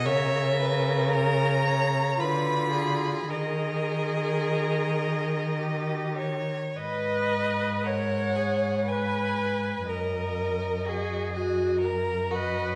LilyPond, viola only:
\new Staff \with { instrumentName = "Viola" } { \time 3/4 \key gis \minor \tempo 4 = 57 ais'2 f'4 | gis'2 g'4 | b'4 cis''4 b'4 | ais'4 gis'8 fis'8 ais'8 b'8 | }